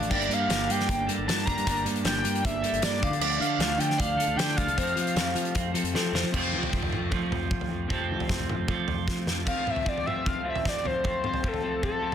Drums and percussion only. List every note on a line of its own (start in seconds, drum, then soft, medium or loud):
0.03 closed hi-hat soft
0.11 kick loud
0.11 crash medium
0.22 closed hi-hat soft
0.31 closed hi-hat medium
0.50 snare loud
0.50 closed hi-hat medium
0.70 closed hi-hat medium
0.80 snare soft
0.89 kick loud
0.89 closed hi-hat medium
1.09 closed hi-hat medium
1.29 snare loud
1.29 closed hi-hat loud
1.39 closed hi-hat soft
1.47 kick medium
1.47 closed hi-hat medium
1.58 closed hi-hat soft
1.67 kick loud
1.67 closed hi-hat loud
1.76 closed hi-hat soft
1.86 closed hi-hat medium
1.96 closed hi-hat soft
2.05 snare loud
2.05 closed hi-hat medium
2.25 closed hi-hat medium
2.35 closed hi-hat soft
2.45 kick loud
2.45 closed hi-hat loud
2.64 closed hi-hat medium
2.74 closed hi-hat soft
2.82 snare loud
2.82 closed hi-hat loud
3.03 kick medium
3.03 closed hi-hat medium
3.13 closed hi-hat soft
3.21 crash loud
3.31 closed hi-hat soft
3.42 closed hi-hat medium
3.60 snare loud
3.60 closed hi-hat medium
3.80 closed hi-hat medium
3.90 snare soft
4.00 kick loud
4.00 closed hi-hat medium
4.20 closed hi-hat medium
4.39 snare loud
4.39 closed hi-hat medium
4.49 closed hi-hat soft
4.58 kick medium
4.58 closed hi-hat medium
4.68 closed hi-hat soft
4.78 kick loud
4.78 closed hi-hat medium
4.87 closed hi-hat soft
4.97 closed hi-hat medium
5.07 closed hi-hat soft
5.16 snare loud
5.16 closed hi-hat medium
5.36 closed hi-hat medium
5.45 closed hi-hat soft
5.55 kick loud
5.55 closed hi-hat medium
5.75 closed hi-hat medium
5.85 closed hi-hat medium
5.95 snare medium
6.15 snare medium
6.34 kick loud
6.34 floor tom medium
6.34 crash medium
6.63 floor tom medium
6.73 kick loud
6.83 floor tom medium
6.92 mid tom medium
7.12 kick loud
7.12 floor tom medium
7.32 floor tom medium
7.32 mid tom medium
7.51 kick loud
7.51 mid tom medium
7.61 floor tom medium
7.90 kick medium
7.90 floor tom medium
8.20 floor tom medium
8.29 kick loud
8.29 snare medium
8.40 floor tom medium
8.49 mid tom medium
8.68 kick loud
8.68 floor tom medium
8.88 floor tom medium
9.08 kick loud
9.08 snare medium
9.27 snare medium
9.47 kick medium
9.47 floor tom medium
9.47 crash medium
9.67 mid tom medium
9.76 floor tom medium
9.86 kick medium
9.98 floor tom medium
10.07 mid tom medium
10.26 kick medium
10.26 floor tom medium
10.56 floor tom medium
10.65 kick medium
10.65 snare medium
10.65 mid tom medium
10.85 floor tom medium
11.04 kick medium
11.04 floor tom medium
11.24 mid tom medium
11.34 floor tom medium
11.44 kick loud
11.54 floor tom medium
11.83 kick medium
11.83 floor tom medium